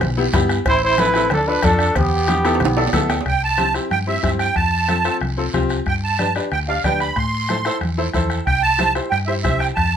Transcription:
0.01 fingered electric bass B1, bombo rim, cowbell, high conga, low conga, long guiro
0.17 upright piano B3 E4 G4
0.33 fingered electric bass G2, upright piano B3 E4 G4 B5, bombo low, bombo rim, cowbell, high conga, low conga, low timbale, short guiro
0.49 bombo rim, short guiro
0.65 fingered electric bass A1, accordion E4, trumpet C5, bombo low, bombo rim, cowbell, long guiro
0.82 accordion E4, trumpet C5
0.98 upright piano C4 E4 A4, accordion E4, trumpet B4, bombo rim, cowbell, high conga, short guiro
1.14 upright piano C4 E4 A4, bombo rim, short guiro
1.30 fingered electric bass D2, accordion D4, trumpet A4, bombo rim, cowbell, high conga, low conga, long guiro
1.46 accordion D4, upright piano D4 F4 A4, trumpet B4
1.62 fingered electric bass F2, accordion D4, upright piano D4 F4 A4, trumpet A4, bombo low, bombo rim, cowbell, high conga, low timbale, short guiro
1.79 bombo rim, short guiro
1.95 fingered electric bass E2, accordion B3, trumpet G4, bombo low, bombo rim, cowbell, low conga, long guiro
2.28 upright piano B3 E4 G4, bombo rim, cowbell, high conga, short guiro
2.45 upright piano B3 E4 A4, bombo rim, high timbale, short guiro
2.55 high timbale
2.60 fingered electric bass B1, bombo rim, cowbell, high conga, low conga, long guiro
2.65 high timbale
2.77 upright piano B3 E4 A4 D5, high timbale
2.87 low timbale
2.93 fingered electric bass D2, upright piano B3 E4 A4 E5, bombo low, bombo rim, cowbell, high conga, low conga, short guiro
2.98 low timbale
3.10 upright piano G5, bombo rim, low timbale, short guiro
3.21 low timbale
3.25 fingered electric bass C2, accordion G5, bombo low, bombo rim, long guiro
3.44 accordion A5
3.57 upright piano C4 E4 G4, bombo rim, high conga, short guiro
3.74 upright piano C4 E4 G4, bombo rim, short guiro
3.91 fingered electric bass G2, accordion G5, bombo rim, high conga, long guiro
4.07 upright piano C4 E4 G4, accordion E5
4.23 fingered electric bass G2, upright piano C4 E4 G4, accordion E5, bombo low, bombo rim, high conga, short guiro
4.39 accordion G5, bombo rim, short guiro
4.56 fingered electric bass F2, accordion A5, bombo low, bombo rim, long guiro
4.88 upright piano C4 F4 A4, bombo rim, high conga, short guiro
5.04 upright piano C4 F4 A4, bombo rim, short guiro
5.21 fingered electric bass C2, bombo rim, high conga, long guiro
5.37 upright piano C4 F4 A4
5.53 fingered electric bass C2, upright piano C4 F4 G4, bombo low, bombo rim, high conga, short guiro
5.69 bombo rim, short guiro
5.86 fingered electric bass G2, accordion G5, bombo low, bombo rim, long guiro
6.04 accordion A5
6.19 upright piano D4 G4 B4, bombo rim, high conga, short guiro
6.35 upright piano D4 G4 B4, bombo rim, short guiro
6.51 fingered electric bass D2, accordion G5, bombo rim, long guiro
6.68 upright piano D4 G4 D5, accordion F5
6.84 fingered electric bass D2, upright piano D4 G4 B4, accordion G5, bombo low, bombo rim, high conga, short guiro
7.00 accordion B5, bombo rim, short guiro
7.16 fingered electric bass A2, accordion C6, bombo low, bombo rim, long guiro
7.49 upright piano E4 A4 C5, bombo rim, high conga, short guiro
7.65 upright piano E4 A4 C5, bombo rim, short guiro
7.81 fingered electric bass E2, bombo rim, high conga, long guiro
7.98 upright piano E4 A4 C5
8.13 fingered electric bass E2, upright piano E4 A4 C5, bombo low, bombo rim, high conga, short guiro
8.30 bombo rim, short guiro
8.47 fingered electric bass C2, accordion G5, bombo low, bombo rim, long guiro
8.62 accordion A5
8.78 upright piano E4 G4 C5, bombo rim, high conga, short guiro
8.95 upright piano E4 G4 C5, bombo rim, short guiro
9.11 fingered electric bass G2, accordion G5, bombo rim, long guiro
9.26 upright piano E4 G4 C5, accordion E5
9.43 fingered electric bass C2, upright piano E4 G4 C5, accordion E5, bombo low, bombo rim, high conga, short guiro
9.59 accordion G5, bombo rim, short guiro
9.75 fingered electric bass F2, accordion A5, bombo low, bombo rim, long guiro

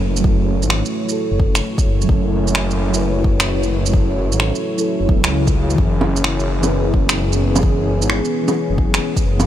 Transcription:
Already playing: detuned saw bass F#1, synth keys F#3 E4 A4 B4, analog synth pad A3 C#4 E4 F#4 C#5
0.16 synth keys F#3, shaker
0.24 synth keys E4, kick
0.28 synth keys A4
0.62 detuned saw bass G#1, shaker
0.70 finger snap
0.85 shaker
1.04 synth keys F#3 E4
1.09 synth keys A4, shaker
1.31 detuned saw bass F#1
1.40 kick
1.55 finger snap, shaker
1.78 kick, shaker
1.85 detuned saw bass F#1
2.02 synth keys F#3, shaker
2.08 detuned saw bass F#1, synth keys E4, kick
2.12 synth keys A4
2.47 shaker
2.55 finger snap
2.71 shaker
2.89 synth keys F#3
2.93 synth keys E4 B4, shaker
3.24 kick
3.40 finger snap, shaker
3.63 shaker
3.86 synth keys F#3, shaker
3.93 synth keys E4 A4, kick
4.31 detuned saw bass G#1, shaker
4.40 finger snap
4.55 shaker
4.76 synth keys F#3 E4, shaker
4.80 synth keys A4
5.00 detuned saw bass F#1
5.07 detuned saw bass E1, synth keys F#3 E4 A4, kick
5.24 detuned saw bass C#2, finger snap, shaker
5.47 kick, shaker
5.70 synth keys E3, shaker
5.77 detuned saw bass F#1, analog synth pad B3 G#4, synth keys C#4, kick
5.82 synth keys G#4
6.01 low bongo
6.16 shaker
6.24 finger snap
6.40 shaker
6.59 synth keys E3 C#4
6.63 synth keys B4, low bongo, shaker
6.94 kick
7.09 finger snap, shaker
7.33 shaker
7.56 synth keys E3, low bongo, shaker
7.62 synth keys C#4 G#4, kick
8.01 detuned saw bass G#1, shaker
8.10 finger snap
8.25 shaker
8.43 synth keys E3 C#4
8.48 synth keys G#4, low bongo, shaker
8.70 detuned saw bass F#1
8.78 kick
8.94 finger snap, shaker
9.16 kick, shaker
9.24 detuned saw bass F#1
9.40 synth keys E3, low bongo, shaker

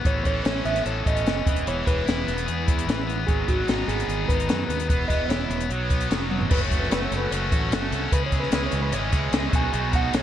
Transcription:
Already playing: overdriven electric guitar B3 E4
0.03 fingered electric bass A1, overdriven electric guitar A2 E3 A3 C#4 E4 A4, clean electric guitar C#5, kick, closed hi-hat
0.25 fingered electric bass A1, overdriven electric guitar E3, clean electric guitar C#5, kick, closed hi-hat
0.45 fingered electric bass A1, overdriven electric guitar C#4, clean electric guitar C#5, snare, closed hi-hat
0.65 fingered electric bass A1, overdriven electric guitar B3, clean electric guitar E5, closed hi-hat
0.76 snare, closed hi-hat
0.86 fingered electric bass A1, overdriven electric guitar A4, clean electric guitar C#5, closed hi-hat
1.06 fingered electric bass A1, overdriven electric guitar C#4, clean electric guitar D#5, kick, closed hi-hat
1.17 closed hi-hat
1.26 fingered electric bass F#1, overdriven electric guitar E3, snare, closed hi-hat
1.46 fingered electric bass E1, overdriven electric guitar E2 E3 G#3 B3 E4 G#4, kick, closed hi-hat
1.56 closed hi-hat
1.67 fingered electric bass E1, overdriven electric guitar E3, clean electric guitar C#5, closed hi-hat
1.86 fingered electric bass E1, overdriven electric guitar E3, clean electric guitar B4, kick, closed hi-hat
2.06 fingered electric bass E1, overdriven electric guitar E4, snare, closed hi-hat
2.27 fingered electric bass E1, overdriven electric guitar B3, closed hi-hat
2.38 closed hi-hat
2.46 fingered electric bass E2, overdriven electric guitar G#4, closed hi-hat
2.66 overdriven electric guitar E4, kick, closed hi-hat
2.79 closed hi-hat
2.87 fingered electric bass A1, overdriven electric guitar E3, snare, closed hi-hat
3.07 overdriven electric guitar B3, closed hi-hat
3.27 fingered electric bass G#1, overdriven electric guitar G#2 D#3 F#3 G#3 B3 D#4 G#4, clean electric guitar G#4, kick, closed hi-hat
3.48 fingered electric bass G#1, overdriven electric guitar F#3, clean electric guitar F#4, kick, closed hi-hat
3.68 fingered electric bass G#1, overdriven electric guitar D#4, snare, closed hi-hat
3.88 fingered electric bass G#1, overdriven electric guitar B3, clean electric guitar G#4, closed hi-hat
4.00 closed hi-hat
4.08 fingered electric bass G#1, overdriven electric guitar G#4, closed hi-hat
4.29 fingered electric bass G#1, overdriven electric guitar D#4, clean electric guitar B4, kick, closed hi-hat
4.40 closed hi-hat
4.48 fingered electric bass F#2, overdriven electric guitar F#3, snare, closed hi-hat
4.68 fingered electric bass D#2, overdriven electric guitar B3, clean electric guitar B4, closed hi-hat
4.79 closed hi-hat
4.88 fingered electric bass E1, overdriven electric guitar E2 B2 E3 B3 E4 G#4, kick, closed hi-hat
5.08 fingered electric bass E1, overdriven electric guitar B3, clean electric guitar D#5, kick, closed hi-hat
5.29 fingered electric bass E1, overdriven electric guitar E4, clean electric guitar C#5, snare, closed hi-hat
5.50 fingered electric bass E1, overdriven electric guitar B3, closed hi-hat
5.60 closed hi-hat
5.69 fingered electric bass B1, overdriven electric guitar B2 F#3 B3 D#4 F#4, closed hi-hat
5.90 overdriven electric guitar B3, kick, closed hi-hat
6.01 closed hi-hat
6.10 fingered electric bass F1, overdriven electric guitar F#3, snare, closed hi-hat
6.30 overdriven electric guitar F#3, high tom
6.41 floor tom
6.50 fingered electric bass F#1, overdriven electric guitar F#3 A3 C#4 F#4, analog synth pad A4 F#5 C#6, clean electric guitar B4, kick, crash
6.64 clean electric guitar C#5
6.70 overdriven electric guitar A3 C#4 F#4, kick, closed hi-hat
6.79 clean electric guitar B4, snare
6.90 fingered electric bass F#1, overdriven electric guitar A3 C#4 F#4, clean electric guitar B4, snare, closed hi-hat
7.05 clean electric guitar C#5
7.11 fingered electric bass F#1, overdriven electric guitar F#3, closed hi-hat
7.17 clean electric guitar B4
7.30 fingered electric bass F#1, overdriven electric guitar A3 C#4, clean electric guitar C#5, closed hi-hat
7.34 overdriven electric guitar F#4
7.51 fingered electric bass A1, overdriven electric guitar C#4 F#4, kick, closed hi-hat
7.71 fingered electric bass F#1, overdriven electric guitar A3 C#4 F#4, snare, closed hi-hat
7.91 fingered electric bass C2, overdriven electric guitar C#4 F#4, closed hi-hat
7.95 overdriven electric guitar C#4
8.11 fingered electric bass C#2, overdriven electric guitar C#3 E3 G#3 C#4 G#4, analog synth pad G#4 E5, clean electric guitar B4, kick, closed hi-hat
8.26 clean electric guitar C#5
8.31 fingered electric bass C#2, overdriven electric guitar E3 C#4 G#4, kick, closed hi-hat
8.35 overdriven electric guitar G#3
8.40 clean electric guitar B4, snare
8.52 fingered electric bass C#2, overdriven electric guitar E3 G#3 C#4 G#4, clean electric guitar B4, snare, closed hi-hat
8.66 clean electric guitar C#5
8.71 fingered electric bass C#2, overdriven electric guitar E3, closed hi-hat
8.82 clean electric guitar B4
8.92 fingered electric bass G#1, overdriven electric guitar E3 G#3 C#4 G#4, clean electric guitar C#5, closed hi-hat
9.12 fingered electric bass C#2, overdriven electric guitar G#3 C#4 E4 G#4, kick, closed hi-hat
9.32 fingered electric bass C#2, overdriven electric guitar E3 G#3 C#4 G#4, snare, closed hi-hat
9.52 fingered electric bass B1, overdriven electric guitar B2 D#3 B3 D#4 F#4, analog synth pad D#5 B5, clean electric guitar G#5, kick, closed hi-hat
9.72 fingered electric bass B1, overdriven electric guitar B2 D#3 B3 D#4 F#4, closed hi-hat
9.92 overdriven electric guitar D#3 B3 D#4 F#4, clean electric guitar F#5, kick, closed hi-hat
10.12 fingered electric bass B1, overdriven electric guitar D#3 G#3 B3 D#4 F#4, clean electric guitar C#5, snare, closed hi-hat

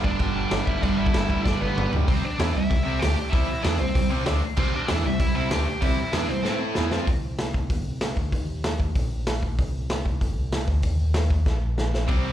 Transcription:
Already playing: overdriven electric guitar G2 D3 G3
0.04 analog synth bass G1, distorted electric guitar G2 D3 G3, lead electric guitar D4 D5, kick
0.19 analog synth bass G1, distorted electric guitar G2 D3 G3, kick, crash
0.35 analog synth bass G1, distorted electric guitar G2 D3 G3
0.50 analog synth bass G1, distorted electric guitar G2 D3 G3, snare, crash
0.66 analog synth bass G1, distorted electric guitar G2 D3 G3, lead electric guitar E4 E5, kick
0.82 analog synth bass G1, distorted electric guitar G2 D3 G3, lead electric guitar D4 D5, kick, crash
0.97 analog synth bass G1, distorted electric guitar G2 D3 G3, lead electric guitar E4 E5
1.06 kick
1.13 analog synth bass G1, distorted electric guitar G2 D3 G3, snare, crash
1.28 distorted electric guitar G2 D3 G3, kick
1.44 analog synth bass G1, distorted electric guitar G2 D3 G3, lead electric guitar D4 D5, kick, snare
1.60 analog synth bass G1, distorted electric guitar G2 D3 G3, lead electric guitar B3 B4, high tom
1.75 analog synth bass G1, distorted electric guitar G2 D3 G3, mid tom
1.92 analog synth bass D2, distorted electric guitar G2 D3 G3, floor tom
2.07 analog synth bass C2, distorted electric guitar C3 G3 C4, lead electric guitar C4 C5, kick, open hi-hat
2.23 analog synth bass C2, lead electric guitar D4 D5, muted distorted electric guitar stroke, muted overdriven electric guitar stroke
2.38 analog synth bass E2, distorted electric guitar E3 B3 E4, snare, open hi-hat
2.53 analog synth bass C2, distorted electric guitar C3 G3, lead electric guitar E4 E5
2.70 analog synth bass C2, distorted electric guitar C3 G3, kick, open hi-hat
2.84 analog synth bass C2, distorted electric guitar C3 G3 C4, lead electric guitar E4 E5
2.99 analog synth bass D2, distorted electric guitar D3 A3 D4, lead electric guitar G4 G5, snare, open hi-hat
3.16 analog synth bass C2, muted distorted electric guitar stroke, muted overdriven electric guitar stroke
3.30 analog synth bass C2, distorted electric guitar C3 G3 C4, lead electric guitar E5, kick, open hi-hat
3.34 lead electric guitar E4
3.48 analog synth bass C2, muted distorted electric guitar stroke, muted overdriven electric guitar stroke
3.62 analog synth bass E2, distorted electric guitar E3 B3 E4, lead electric guitar D4 D5, snare, open hi-hat
3.79 analog synth bass C2, distorted electric guitar C3 G3, lead electric guitar C4 C5
3.95 analog synth bass C2, distorted electric guitar C3 G3, kick, open hi-hat
4.10 analog synth bass C2, distorted electric guitar C3 G3 C4
4.25 analog synth bass D2, distorted electric guitar D3 A3 D4, snare, open hi-hat
4.42 analog synth bass C2, muted overdriven electric guitar stroke, muted distorted electric guitar stroke
4.57 analog synth bass C2, distorted electric guitar C3 G3 C4, lead electric guitar C4 C5, kick, crash
4.72 analog synth bass C2, lead electric guitar D4 D5, muted overdriven electric guitar stroke, muted distorted electric guitar stroke
4.88 analog synth bass E2, distorted electric guitar E3 B3 E4, snare, open hi-hat
5.05 analog synth bass C2, distorted electric guitar C3 G3, lead electric guitar E4 E5
5.20 analog synth bass C2, distorted electric guitar C3 G3, lead electric guitar E4 E5, kick, open hi-hat
5.34 analog synth bass C2, distorted electric guitar C3 G3 C4, lead electric guitar E4 E5
5.50 analog synth bass D2, distorted electric guitar D3 A3 D4, lead electric guitar G4 G5, snare, open hi-hat
5.65 analog synth bass C2, muted distorted electric guitar stroke, muted overdriven electric guitar stroke
5.81 analog synth bass C2, distorted electric guitar C3 G3 C4, lead electric guitar E4 E5, kick, open hi-hat
5.98 analog synth bass C2, muted overdriven electric guitar stroke, muted distorted electric guitar stroke
6.12 analog synth bass E2, distorted electric guitar E3 B3 E4, lead electric guitar D4 D5, snare, open hi-hat
6.28 analog synth bass C2, distorted electric guitar C3 G3, lead electric guitar C4 C5
6.43 analog synth bass A2, distorted electric guitar A3 E4 A4, snare
6.75 analog synth bass E2, distorted electric guitar E3 B3 E4, snare
6.91 analog synth bass F2, distorted electric guitar F3 C4 F4, snare
7.07 analog synth bass C2, kick, open hi-hat
7.23 analog synth bass C2
7.38 analog synth bass C2, snare, open hi-hat
7.54 kick
7.70 analog synth bass G1, kick, open hi-hat
7.86 analog synth bass C2
8.00 analog synth bass C2, snare, open hi-hat
8.17 analog synth bass D2, kick
8.32 analog synth bass D#2, kick, open hi-hat
8.48 analog synth bass D#2
8.64 analog synth bass D#2, snare, open hi-hat
8.80 kick
8.95 analog synth bass A#1, kick, open hi-hat
9.12 analog synth bass A#1
9.27 analog synth bass A#1, snare, open hi-hat
9.43 analog synth bass A#1, kick
9.59 analog synth bass C2, kick, open hi-hat
9.74 analog synth bass C2
9.90 analog synth bass C2, snare, open hi-hat
10.06 kick
10.21 analog synth bass G1, kick, open hi-hat
10.38 analog synth bass C2
10.52 analog synth bass C2, snare, open hi-hat
10.68 analog synth bass D2, kick
10.82 analog synth bass D#2, kick, open hi-hat
11.01 analog synth bass D#2
11.14 analog synth bass D#2, snare, open hi-hat
11.30 kick
11.46 analog synth bass A#1, kick, snare
11.62 analog synth bass A#1
11.78 analog synth bass A#1, snare
11.94 analog synth bass A#1, snare
12.08 analog synth bass C2, distorted electric guitar C3 G3 C4, kick, open hi-hat, crash
12.24 analog synth bass C2, distorted electric guitar C3 G3 C4

